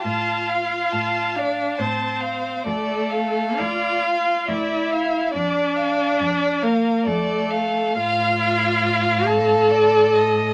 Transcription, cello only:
\new Staff \with { instrumentName = "Cello" } { \clef bass \time 3/4 \key d \minor \tempo 4 = 69 a,4 a,4 a,4 | d,4 d,4 d,4 | f,4 f,4 f,4 | \key f \mixolydian a,2. | }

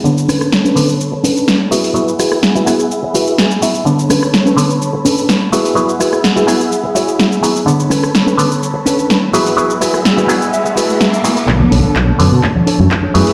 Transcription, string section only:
\new Staff \with { instrumentName = "String section" } { \time 4/4 \key b \dorian \tempo 4 = 126 << { b''1~ | b''1~ | b''1~ | b''1 |
b''1~ | b''1 | a''2.~ a''8 gis''8 | } \\ { <a' cis''>2.~ <a' cis''>8 <gis' e'' fis''>8~ | <gis' e'' fis''>1 | <a' cis''>2.~ <a' cis''>8 <gis' e'' fis''>8~ | <gis' e'' fis''>1 |
<a' cis''>2.~ <a' cis''>8 <gis' e'' fis''>8~ | <gis' e'' fis''>1 | <d cis''>2.~ <d cis''>8 <e' b'>8 | } >> }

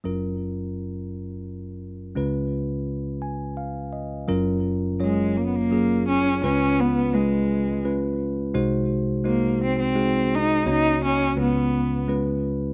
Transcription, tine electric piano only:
<<
  \new Staff \with { instrumentName = "Tine electric piano" } { \time 3/4 \key fis \major \tempo 4 = 85 << { r2. | r4. gis''8 eis''8 dis''8 | r2. | r2. |
r2. | r2. | } \\ { <fis cis' eis' ais'>2. | <gis cis' eis' b'>2. | <fis cis' eis' ais'>4 <fis cis' eis' cis''>4 <fis cis' eis' gis'>4 | <gis cis' eis' b'>4 <gis cis' eis' b'>4 <gis cis' eis' b'>4 |
<gis dis' fis' bis'>4 <gis dis' fis' bis'>4 <gis dis' fis' gis'>4 | <ais cis' fis' cis''>4 <gis cis' eis' b'>4 <gis cis' eis' b'>4 | } >> }
  \new Staff \with { instrumentName = "Tine electric piano" } { \clef bass \time 3/4 \key fis \major <fis,, fis,>2. | <cis, cis>2. | <fis,, fis,>2. | <cis, cis>2. |
<bis,, bis,>2. | <cis, cis>4 <cis, cis>2 | }
>>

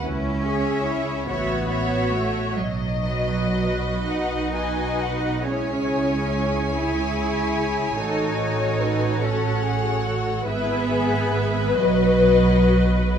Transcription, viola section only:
\new Staff \with { instrumentName = "Viola section" } { \time 6/8 \key b \mixolydian \tempo 4. = 46 << { r8 gis'4 cis''8 cis''4 | r8 b'4. b'4 | gis'2. | a'2. |
b'2. | } \\ { r8 gis'4 fis'8 fis'4 | r8 fis'4. fis'4 | e'2. | fis'2. |
gis'4. fis'4. | } >> }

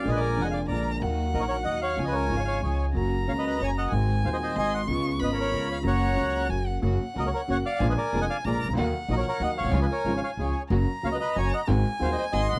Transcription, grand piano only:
\new Staff \with { instrumentName = "Grand piano" } { \clef bass \time 3/4 \key fis \major \tempo 4 = 186 <ais,, ais, d gis ais eis'>4 <eis,, eis, d gis ais eis'>4 <ais,, ais, d gis ais eis'>4 | <dis, dis fis ais fis'>4 <ais,, ais, dis fis ais fis'>4 <dis, dis fis ais fis'>4 | <cis, cis eis gis eis'>4 <gis,, gis, cis eis gis eis'>4 <cis, cis eis gis eis'>4 | <fis, cis fis ais fis'>4 <cis, cis fis ais fis'>4 <fis, cis fis ais fis'>4 |
<gis,, gis, dis gis bis fis'>4 <dis,, dis, dis gis bis fis'>4 <gis,, gis, dis gis bis fis'>4 | <cis, cis gis b eis'>4 <gis,, gis, cis gis b eis'>4 <cis, cis gis b eis'>4 | <fis, cis fis ais fis'>4 <cis, cis fis ais fis'>4 <fis, cis fis ais fis'>4 | <fis, cis fis ais fis'>8 r8 <cis, cis fis ais fis'>8 r8 <fis, cis fis ais fis'>8 r8 |
<ais,, ais, d gis ais eis'>8 r8 <eis,, eis, d gis ais eis'>8 r8 <ais,, ais, d gis ais eis'>8 r32 bis,,32 cis,32 d,32 | <dis, dis fis ais fis'>8 r8 <ais,, ais, dis fis ais fis'>8 r8 <dis, dis fis ais fis'>8 r32 ais,,32 b,,32 bis,,32 | <cis, cis eis gis eis'>8 r8 <gis,, gis, cis eis gis eis'>8 r8 <cis, cis eis gis eis'>8 r8 | <fis, cis fis ais fis'>8 r8 <cis, cis fis ais fis'>8 r8 <fis, cis fis ais fis'>8 r8 |
<gis,, gis, dis gis bis fis'>8 r8 <dis,, dis, dis gis bis fis'>8 r8 <gis,, gis, dis gis bis fis'>8 r32 ais,,32 r16 | }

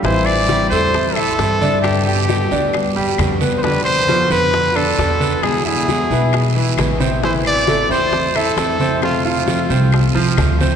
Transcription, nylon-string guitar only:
\new Staff \with { instrumentName = "Nylon-string guitar" } { \time 4/4 \key a \minor \tempo 4 = 134 <e g c' e'>4 <e g c' e'>8 <g c' e'>8 <e g c' e'>8 r8 <e g c' e'>8 <g c' e'>8 | <b, d g b g'>4 <b, d g b g'>8 <g b g'>8 <d g b g'>8 r8 <b, d g b g'>8 <g b g'>8 | <b, d b f'>4 <b, d b f'>8 <d b f'>8 <b, d b f'>8 r8 <b, d b f'>8 <d b f'>8 | <b, e gis b e'>4 <b, e gis b e'>8 <gis b e'>8 <e gis b e'>8 r8 <b, e gis b e'>8 <gis b e'>8 |
<e a c' e'>4 <e a c' e'>8 <a c' e'>8 <e a c' e'>8 r8 <e a c' e'>8 <a c' e'>8 | <c f a c' f'>4 <c f a c' f'>8 <a c' f'>8 <f a c' f'>8 r8 <c f a c' f'>8 <a c' f'>8 | }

